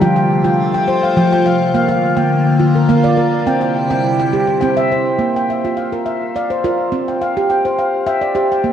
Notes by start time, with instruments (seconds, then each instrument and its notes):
Already playing: handpan G4
0.01 ambient pad C3 A3 F4, handpan F3 F4 G5
0.16 handpan G5
0.44 handpan F4 G5
0.74 handpan G5
0.88 handpan C5
1.03 handpan F5
1.17 handpan F3 G5
1.32 handpan G5
1.46 handpan F5
1.73 ambient pad D3 A#3, handpan A#3 F5
1.88 handpan F5
2.17 handpan A#3 G5
2.59 handpan F4
2.75 handpan A#4
2.89 handpan A#3 F5
3.04 handpan D5
3.17 handpan A#4
3.46 ambient pad C3 G3 E4, handpan C4 G5
3.61 handpan G5
3.90 handpan C4 G5
4.19 handpan G5
4.33 handpan G4
4.47 handpan C5
4.61 handpan C4 G5
4.77 handpan E5
4.92 handpan C5
5.19 handpan A#3
5.36 handpan G5
5.50 handpan E5
5.65 handpan F4
5.77 handpan F5
5.92 handpan A#4
6.06 handpan E5
6.36 handpan D5 F5
6.50 handpan C5
6.64 handpan F4 A#4
6.92 handpan C4
7.08 handpan G5
7.22 handpan F5
7.37 handpan G4
7.50 handpan G5
7.65 handpan C5
7.79 handpan F5
8.06 handpan E5 G5
8.21 handpan D5
8.35 handpan G4 C5
8.52 handpan G5
8.64 handpan A#3